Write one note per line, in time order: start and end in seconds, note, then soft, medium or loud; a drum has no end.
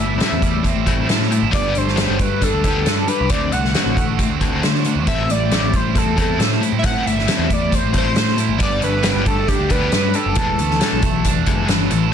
0.00 0.19 G1 medium
0.00 0.17 A2 medium
0.00 0.86 A2 medium
0.00 0.41 G3 medium
0.00 0.17 A3 medium
0.00 0.18 E4 medium
0.00 0.45 A4 medium
0.00 0.86 E5 medium
0.18 0.40 A2 medium
0.18 0.40 A3 medium
0.18 0.40 C4 medium
0.18 0.87 E4 medium
0.18 snare medium
0.18 closed hi-hat medium
0.32 0.73 E2 medium
0.41 0.62 A2 medium
0.41 1.53 G3 medium
0.41 0.62 A3 medium
0.41 kick medium
0.41 closed hi-hat medium
0.63 0.84 A2 medium
0.63 0.84 A3 medium
0.63 1.53 C4 medium
0.63 kick medium
0.63 closed hi-hat medium
0.76 1.07 A1 medium
0.86 1.07 A2 medium
0.86 1.08 A3 medium
0.86 1.08 C4 medium
0.86 1.31 E4 medium
0.86 kick medium
0.86 closed hi-hat soft
1.09 1.44 A2 medium
1.09 1.29 A2 medium
1.09 1.29 A3 medium
1.09 1.58 A4 medium
1.09 snare medium
1.09 closed hi-hat medium
1.22 snare soft
1.31 1.51 A2 medium
1.31 1.51 A3 medium
1.31 1.54 E4 medium
1.31 closed hi-hat soft
1.42 1.52 A1 medium
1.51 1.74 G1 medium
1.51 1.73 G3 medium
1.51 2.65 G3 medium
1.51 1.74 B3 loud
1.51 1.73 D4 medium
1.51 1.79 D5 loud
1.51 kick loud
1.51 closed hi-hat medium
1.74 2.06 G1 medium
1.74 1.95 G3 medium
1.74 2.20 A3 medium
1.74 1.95 D4 medium
1.74 2.23 C5 medium
1.74 closed hi-hat soft
1.88 snare soft
1.96 2.17 G3 medium
1.96 2.18 B3 medium
1.96 2.18 D4 medium
1.96 2.64 G4 medium
1.96 snare loud
1.96 closed hi-hat medium
2.09 2.50 G1 medium
2.19 2.39 G3 medium
2.19 3.52 A3 medium
2.19 2.39 D4 medium
2.19 2.45 B4 medium
2.19 kick medium
2.19 closed hi-hat medium
2.41 2.62 G3 medium
2.41 2.62 D4 medium
2.41 3.31 D4 medium
2.41 2.63 A4 loud
2.41 kick medium
2.41 closed hi-hat medium
2.53 2.84 D2 medium
2.64 2.85 G3 medium
2.64 2.85 B3 medium
2.64 2.85 D4 medium
2.64 3.07 G4 medium
2.64 3.10 A4 medium
2.64 kick medium
2.64 closed hi-hat medium
2.86 3.07 G2 medium
2.86 3.06 G3 medium
2.86 3.06 D4 medium
2.86 3.31 B4 medium
2.86 snare medium
2.86 closed hi-hat medium
3.07 3.28 G3 medium
3.07 3.28 D4 medium
3.07 3.31 G4 medium
3.07 3.31 B4 loud
3.07 closed hi-hat medium
3.21 3.30 C2 medium
3.29 3.51 D2 medium
3.29 4.41 D3 medium
3.29 3.51 D3 medium
3.29 3.51 A3 medium
3.29 3.52 C4 medium
3.29 3.53 D5 loud
3.29 kick loud
3.29 closed hi-hat medium
3.52 3.73 C2 medium
3.52 3.73 D3 medium
3.52 3.96 A3 medium
3.52 3.73 A3 medium
3.52 4.41 F#5 medium
3.52 closed hi-hat medium
3.65 snare soft
3.74 3.96 D3 medium
3.74 3.96 A3 medium
3.74 3.96 C4 medium
3.74 4.40 F#4 medium
3.74 snare medium
3.74 closed hi-hat medium
3.86 4.26 A1 medium
3.96 4.17 D3 medium
3.96 5.29 A3 medium
3.96 4.17 A3 medium
3.96 kick medium
3.96 closed hi-hat medium
4.18 4.39 D3 medium
4.18 4.39 A3 medium
4.18 5.95 C4 medium
4.18 kick medium
4.18 closed hi-hat medium
4.29 4.60 D2 medium
4.41 4.62 D3 medium
4.41 4.62 A3 medium
4.41 4.62 C4 medium
4.41 4.84 F#4 medium
4.41 kick medium
4.41 closed hi-hat medium
4.63 4.97 D3 medium
4.63 4.84 D3 medium
4.63 4.84 A3 medium
4.63 6.39 C5 medium
4.63 snare medium
4.63 closed hi-hat medium
4.75 snare soft
4.85 5.06 D3 medium
4.85 5.06 A3 medium
4.85 5.07 F#4 medium
4.85 closed hi-hat medium
4.95 5.06 E2 medium
5.07 6.18 A2 medium
5.07 5.28 A2 medium
5.07 5.28 A3 medium
5.07 5.29 C4 medium
5.07 5.32 E5 loud
5.07 kick loud
5.07 closed hi-hat medium
5.29 5.60 A1 medium
5.29 5.50 A2 medium
5.29 5.73 G3 medium
5.29 5.50 A3 medium
5.29 5.77 D5 medium
5.29 closed hi-hat medium
5.51 5.72 A2 medium
5.51 5.72 A3 medium
5.51 5.72 C4 medium
5.51 6.16 E4 medium
5.51 snare medium
5.51 closed hi-hat medium
5.62 6.03 A1 medium
5.73 5.93 A2 medium
5.73 6.88 G3 medium
5.73 5.93 A3 medium
5.73 5.99 C5 medium
5.73 kick medium
5.73 closed hi-hat medium
5.95 6.15 A2 medium
5.95 6.15 A3 medium
5.95 7.06 C4 medium
5.95 6.19 A4 medium
5.95 kick medium
5.95 closed hi-hat medium
6.05 6.36 E2 medium
6.16 6.38 A2 medium
6.16 6.38 A3 medium
6.16 6.38 C4 medium
6.16 6.61 E4 medium
6.16 kick medium
6.16 closed hi-hat medium
6.21 6.61 A4 medium
6.39 6.59 A2 medium
6.39 6.60 A2 medium
6.39 6.59 A3 medium
6.39 7.50 C5 medium
6.39 snare medium
6.39 closed hi-hat medium
6.52 snare soft
6.61 6.81 A2 medium
6.61 6.82 A3 medium
6.61 7.28 E4 medium
6.61 closed hi-hat medium
6.72 6.93 A2 medium
6.79 6.86 E5 medium
6.83 7.04 A2 medium
6.83 7.95 A2 medium
6.83 7.04 A3 medium
6.83 7.04 C4 medium
6.83 7.08 F#5 loud
6.83 kick loud
6.83 closed hi-hat medium
7.06 7.26 G1 medium
7.06 7.26 A2 medium
7.06 7.49 G3 medium
7.06 7.27 A3 medium
7.06 7.54 E5 loud
7.06 closed hi-hat medium
7.19 snare soft
7.28 7.47 A2 medium
7.28 7.47 A3 medium
7.28 7.49 C4 medium
7.28 7.93 E4 medium
7.28 snare loud
7.28 closed hi-hat medium
7.39 7.80 E2 medium
7.49 7.69 A2 medium
7.49 8.60 G3 medium
7.49 7.69 A3 medium
7.49 kick medium
7.49 closed hi-hat medium
7.53 7.76 D5 medium
7.71 7.91 A2 medium
7.71 7.92 A3 medium
7.71 8.60 C4 medium
7.71 7.95 C5 medium
7.71 kick medium
7.71 closed hi-hat medium
7.84 8.14 A1 medium
7.93 8.14 A2 medium
7.93 8.14 A3 medium
7.93 8.14 C4 medium
7.93 8.39 E4 medium
7.93 kick medium
7.93 closed hi-hat medium
7.97 8.37 C5 medium
8.16 8.36 A2 medium
8.16 8.50 A2 medium
8.16 8.36 A3 medium
8.16 8.61 C5 medium
8.16 snare medium
8.16 closed hi-hat medium
8.28 snare soft
8.37 8.57 A2 medium
8.37 8.58 A3 medium
8.37 8.61 E4 medium
8.37 closed hi-hat medium
8.49 8.59 A1 medium
8.58 8.81 G1 medium
8.58 8.80 G3 medium
8.58 9.71 G3 medium
8.58 8.80 B3 medium
8.58 8.80 D4 medium
8.58 kick loud
8.58 closed hi-hat medium
8.62 8.82 D5 loud
8.81 9.13 G1 medium
8.81 9.02 G3 medium
8.81 9.26 A3 medium
8.81 9.02 D4 medium
8.81 9.24 B4 medium
8.81 closed hi-hat soft
9.03 9.24 G3 medium
9.03 9.25 B3 medium
9.03 9.24 D4 medium
9.03 9.70 G4 medium
9.03 snare medium
9.03 closed hi-hat medium
9.15 9.56 G1 medium
9.25 9.46 G3 medium
9.25 10.59 A3 medium
9.25 9.46 D4 medium
9.25 9.50 A4 medium
9.25 kick medium
9.25 closed hi-hat medium
9.48 9.68 G3 medium
9.48 9.68 D4 medium
9.48 10.37 D4 medium
9.48 9.72 G4 loud
9.48 kick medium
9.48 closed hi-hat medium
9.59 9.90 D2 medium
9.69 9.91 G3 medium
9.69 9.91 B3 medium
9.69 9.91 D4 medium
9.69 10.13 G4 medium
9.69 10.16 B4 loud
9.69 kick medium
9.69 closed hi-hat medium
9.92 10.14 G2 medium
9.92 10.12 G3 medium
9.92 10.12 D4 medium
9.92 10.37 B4 medium
9.92 snare medium
9.92 closed hi-hat medium
10.14 10.35 G3 medium
10.14 10.35 D4 medium
10.14 10.36 G4 medium
10.14 11.69 A4 loud
10.14 closed hi-hat medium
10.26 10.36 F#1 medium
10.35 10.57 E1 medium
10.35 10.57 E2 medium
10.35 10.57 E3 medium
10.35 11.47 E3 medium
10.35 10.58 G#3 medium
10.35 kick loud
10.35 closed hi-hat medium
10.59 10.79 D2 medium
10.59 10.79 E2 medium
10.59 10.79 E3 medium
10.59 11.02 A3 medium
10.59 closed hi-hat medium
10.70 snare soft
10.80 11.01 E2 medium
10.80 11.01 E3 medium
10.80 11.01 G#3 medium
10.80 11.45 A4 medium
10.80 snare loud
10.80 closed hi-hat medium
10.93 11.33 B1 medium
11.02 11.23 E2 medium
11.02 11.23 E3 medium
11.02 12.13 A3 medium
11.02 kick medium
11.02 closed hi-hat medium
11.24 11.45 E2 medium
11.24 11.45 E3 medium
11.24 12.13 D4 medium
11.24 kick medium
11.24 closed hi-hat medium
11.36 11.46 E1 medium
11.46 11.67 F#1 medium
11.46 11.67 E2 medium
11.46 11.67 E3 medium
11.46 11.68 G#3 medium
11.46 11.90 A4 medium
11.46 kick medium
11.46 closed hi-hat medium
11.68 11.89 G1 medium
11.68 11.88 E2 medium
11.68 11.89 E3 medium
11.68 12.13 B4 medium
11.68 snare medium
11.68 closed hi-hat medium
11.90 12.11 A1 medium
11.90 12.11 E2 medium
11.90 12.11 E3 medium
11.90 12.13 A4 medium
11.90 closed hi-hat medium